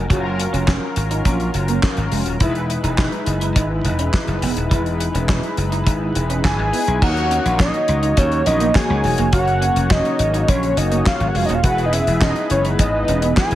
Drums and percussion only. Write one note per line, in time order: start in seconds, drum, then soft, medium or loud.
0.10 kick loud
0.10 closed hi-hat medium
0.40 closed hi-hat medium
0.54 closed hi-hat soft
0.68 kick loud
0.68 snare loud
0.68 clap medium
0.96 closed hi-hat medium
1.11 closed hi-hat soft
1.25 kick loud
1.25 closed hi-hat medium
1.40 closed hi-hat soft
1.54 closed hi-hat medium
1.68 closed hi-hat medium
1.83 kick loud
1.83 snare loud
1.83 clap medium
1.97 closed hi-hat soft
2.12 open hi-hat medium
2.26 closed hi-hat medium
2.40 kick loud
2.40 closed hi-hat medium
2.55 closed hi-hat soft
2.70 closed hi-hat medium
2.84 closed hi-hat soft
2.98 kick loud
2.98 snare loud
2.98 clap medium
3.12 closed hi-hat soft
3.26 closed hi-hat medium
3.41 closed hi-hat soft
3.56 kick loud
3.56 closed hi-hat loud
3.85 closed hi-hat medium
3.99 closed hi-hat medium
4.14 kick loud
4.14 snare loud
4.14 clap medium
4.28 closed hi-hat soft
4.42 open hi-hat medium
4.57 closed hi-hat medium
4.71 kick loud
4.71 closed hi-hat medium
4.86 closed hi-hat soft
5.00 closed hi-hat medium
5.15 closed hi-hat soft
5.29 kick loud
5.29 snare loud
5.29 clap medium
5.43 closed hi-hat soft
5.57 closed hi-hat medium
5.72 closed hi-hat soft
5.87 kick loud
5.87 closed hi-hat loud
6.15 closed hi-hat medium
6.30 closed hi-hat medium
6.44 kick loud
6.44 snare loud
6.44 clap medium
6.73 open hi-hat medium
6.87 closed hi-hat medium
7.02 kick loud
7.02 crash medium
7.17 closed hi-hat soft
7.31 closed hi-hat medium
7.46 closed hi-hat medium
7.60 kick loud
7.60 snare loud
7.60 clap medium
7.74 closed hi-hat soft
7.88 closed hi-hat medium
8.03 closed hi-hat soft
8.17 kick loud
8.17 closed hi-hat loud
8.32 closed hi-hat soft
8.46 closed hi-hat medium
8.60 closed hi-hat medium
8.75 kick loud
8.75 snare loud
8.75 clap medium
9.04 open hi-hat medium
9.18 closed hi-hat medium
9.33 kick loud
9.33 closed hi-hat medium
9.48 closed hi-hat soft
9.62 closed hi-hat medium
9.76 closed hi-hat soft
9.91 kick loud
9.91 snare loud
9.91 clap loud
10.05 closed hi-hat soft
10.19 closed hi-hat medium
10.34 closed hi-hat soft
10.48 kick loud
10.48 closed hi-hat loud
10.63 closed hi-hat soft
10.77 closed hi-hat medium
10.92 closed hi-hat medium
11.06 kick loud
11.06 snare loud
11.06 clap medium
11.20 closed hi-hat soft
11.35 open hi-hat medium
11.49 closed hi-hat medium
11.64 kick loud
11.64 closed hi-hat medium
11.78 closed hi-hat soft
11.93 closed hi-hat medium
12.07 closed hi-hat medium
12.21 kick loud
12.21 snare loud
12.21 clap loud
12.36 closed hi-hat soft
12.50 closed hi-hat medium
12.65 closed hi-hat soft
12.79 kick loud
12.79 closed hi-hat loud
13.08 closed hi-hat medium
13.22 closed hi-hat medium
13.37 kick loud
13.37 snare loud
13.37 clap medium
13.51 closed hi-hat soft